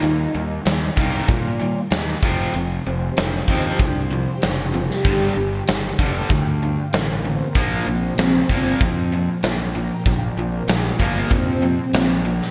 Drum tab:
HH |x---x---x---x---|x---x---x---x---|x---x---x---x---|x---x---x---x---|
SD |----o-------oo--|----o-------o--o|----o-------o---|----o-------o---|
BD |------o-o-----o-|------o-o-------|o-----o-o-------|o-----o-o-------|

HH |x---x---x---x---|
SD |----o-------o--o|
BD |o-----o-o-------|